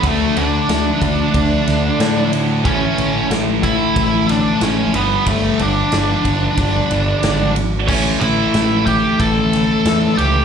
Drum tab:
CC |--------|--------|--------|x-------|
RD |xxxxxxxx|xxxxxxxx|xxxxxxxx|-xxxxxxx|
SD |--o--oo-|--o--oo-|--o---o-|--o--oo-|
BD |o--oo---|o--oo---|o--oo---|o--oo---|